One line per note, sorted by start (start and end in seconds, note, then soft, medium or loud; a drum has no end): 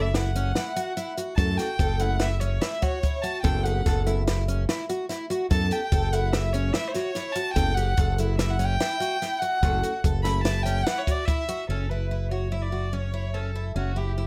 0.00 0.52 F#1 medium
0.00 0.17 E5 medium
0.14 0.30 E4 medium
0.14 1.18 F#5 medium
0.14 snare loud
0.14 closed hi-hat medium
0.35 0.51 C#4 medium
0.35 closed hi-hat medium
0.55 0.72 E4 medium
0.55 snare medium
0.55 closed hi-hat medium
0.76 0.92 F#4 medium
0.76 closed hi-hat medium
0.97 1.12 E4 medium
0.97 closed hi-hat medium
1.18 1.33 F#4 medium
1.18 closed hi-hat medium
1.37 1.57 F#2 medium
1.37 1.67 A3 medium
1.37 1.67 C#4 medium
1.37 1.67 E4 medium
1.37 1.67 F#4 medium
1.37 1.54 A4 medium
1.37 1.59 A5 medium
1.37 kick loud
1.37 closed hi-hat medium
1.57 1.74 F#4 medium
1.57 2.01 G5 medium
1.57 snare soft
1.57 closed hi-hat medium
1.79 2.58 F#1 medium
1.79 1.95 A4 medium
1.79 kick medium
1.79 closed hi-hat medium
1.99 2.30 A3 medium
1.99 2.29 C#4 medium
1.99 2.15 E4 medium
1.99 2.30 E4 medium
1.99 2.29 A4 medium
1.99 2.23 F#5 medium
1.99 closed hi-hat medium
2.20 2.35 E4 medium
2.20 2.41 E5 medium
2.20 snare loud
2.20 closed hi-hat medium
2.40 2.57 C#4 medium
2.40 2.63 C#5 medium
2.40 closed hi-hat medium
2.61 2.77 E4 medium
2.61 2.84 E5 medium
2.61 snare medium
2.61 closed hi-hat medium
2.82 2.98 F#4 medium
2.82 3.23 C#5 medium
2.82 kick medium
2.82 closed hi-hat medium
3.03 3.19 E4 medium
3.03 kick medium
3.03 closed hi-hat medium
3.22 3.39 F#4 medium
3.22 3.41 A5 medium
3.22 closed hi-hat medium
3.42 3.82 F#1 loud
3.42 4.02 B3 medium
3.42 4.02 C#4 medium
3.42 4.02 E4 medium
3.42 3.60 A4 medium
3.42 4.02 A4 medium
3.42 3.65 G5 medium
3.42 kick medium
3.42 closed hi-hat medium
3.64 3.81 G4 medium
3.64 4.06 F#5 medium
3.64 closed hi-hat medium
3.86 4.64 F#1 medium
3.86 4.01 A4 medium
3.86 kick medium
3.86 snare soft
3.86 closed hi-hat medium
4.06 4.21 B3 medium
4.06 4.21 C#4 medium
4.06 4.22 E4 medium
4.06 4.21 E4 medium
4.06 4.21 A4 medium
4.06 closed hi-hat medium
4.27 4.43 E4 medium
4.27 snare loud
4.27 closed hi-hat medium
4.48 4.63 C#4 medium
4.48 closed hi-hat medium
4.69 4.84 E4 medium
4.69 snare loud
4.69 closed hi-hat medium
4.89 5.05 F#4 medium
4.89 closed hi-hat medium
5.09 5.25 E4 medium
5.09 snare soft
5.09 closed hi-hat medium
5.30 5.46 F#4 medium
5.30 closed hi-hat medium
5.51 5.69 F#2 medium
5.51 5.80 B3 medium
5.51 5.80 C#4 medium
5.51 5.80 E4 medium
5.51 5.66 A4 medium
5.51 5.80 A4 medium
5.51 5.74 A5 loud
5.51 kick medium
5.51 closed hi-hat medium
5.71 5.87 G4 medium
5.71 6.14 G5 medium
5.71 closed hi-hat medium
5.92 6.70 F#1 medium
5.92 6.08 A4 medium
5.92 kick loud
5.92 closed hi-hat medium
6.12 6.29 E4 medium
6.12 6.35 F#5 medium
6.12 closed hi-hat medium
6.33 6.49 E4 medium
6.33 6.54 E5 medium
6.33 snare loud
6.33 closed hi-hat medium
6.53 6.69 C#4 medium
6.53 6.75 C#5 medium
6.53 closed hi-hat medium
6.73 6.90 E4 medium
6.73 6.89 E5 medium
6.73 snare loud
6.73 closed hi-hat medium
6.88 6.93 C5 medium
6.92 7.11 F#4 medium
6.92 7.34 C#5 medium
6.92 snare soft
6.92 closed hi-hat medium
7.15 7.31 E4 medium
7.15 snare soft
7.15 closed hi-hat medium
7.33 7.51 F#4 medium
7.33 7.52 A5 loud
7.33 closed hi-hat medium
7.53 7.93 F#1 loud
7.53 7.71 B3 medium
7.53 7.72 A4 medium
7.53 7.75 G5 loud
7.53 kick loud
7.53 closed hi-hat medium
7.57 7.71 C#4 medium
7.57 7.71 E4 medium
7.57 7.71 A4 medium
7.74 7.93 G4 medium
7.74 8.17 F#5 loud
7.74 closed hi-hat medium
7.97 8.76 F#1 medium
7.97 8.13 A4 medium
7.97 kick loud
7.97 closed hi-hat medium
8.18 8.34 E4 medium
8.18 closed hi-hat medium
8.36 8.54 E4 medium
8.36 8.52 E5 medium
8.36 snare loud
8.36 closed hi-hat medium
8.50 8.65 F#5 medium
8.59 8.75 C#4 medium
8.59 closed hi-hat medium
8.64 9.40 G5 loud
8.80 8.96 E4 loud
8.80 snare medium
8.80 closed hi-hat medium
9.00 9.16 F#4 medium
9.00 closed hi-hat medium
9.22 9.37 E4 medium
9.22 snare soft
9.22 closed hi-hat medium
9.39 9.57 F#4 medium
9.39 10.02 F#5 loud
9.39 closed hi-hat soft
9.63 9.81 F#1 loud
9.63 9.92 A3 medium
9.63 9.92 C#4 medium
9.63 9.92 E4 medium
9.63 9.92 F#4 medium
9.63 9.78 A4 medium
9.63 kick loud
9.63 closed hi-hat medium
9.83 9.99 F#4 medium
9.83 closed hi-hat medium
10.04 10.82 F#1 medium
10.04 10.20 A4 medium
10.04 kick loud
10.04 closed hi-hat medium
10.23 10.39 A3 medium
10.23 10.39 C#4 medium
10.23 10.39 E4 medium
10.23 10.40 E4 medium
10.23 10.39 A4 medium
10.23 10.42 B5 loud
10.23 snare soft
10.23 closed hi-hat medium
10.43 10.60 E4 medium
10.43 10.64 A5 medium
10.43 snare loud
10.43 closed hi-hat medium
10.63 10.81 C#4 medium
10.63 10.86 G5 loud
10.63 closed hi-hat medium
10.84 11.02 E4 medium
10.84 10.99 F#5 loud
10.84 snare medium
10.84 closed hi-hat medium
10.98 11.13 C#5 medium
11.07 11.23 F#4 medium
11.07 11.27 D5 medium
11.07 kick medium
11.07 closed hi-hat medium
11.26 11.44 E4 medium
11.26 11.68 E5 medium
11.26 kick medium
11.26 closed hi-hat medium
11.49 11.64 F#4 medium
11.49 closed hi-hat medium
11.69 13.72 F#1 soft
11.69 11.85 C#4 medium
11.69 11.91 A4 medium
11.89 12.06 E4 medium
11.89 12.30 B4 medium
12.11 12.26 E4 medium
12.31 12.47 F#4 medium
12.31 12.53 C#5 medium
12.52 12.67 E4 medium
12.52 12.64 E5 medium
12.62 12.94 D5 medium
12.72 12.88 F#4 soft
12.93 13.08 C#4 medium
12.93 13.35 C#5 medium
13.14 13.29 E4 medium
13.34 13.50 C#4 medium
13.34 13.65 A4 medium
13.55 13.71 E4 medium
13.75 14.27 F#1 medium
13.75 13.91 C#4 medium
13.75 13.98 F#4 medium
13.96 14.12 E4 medium
13.96 14.27 G4 medium
14.18 14.27 E4 medium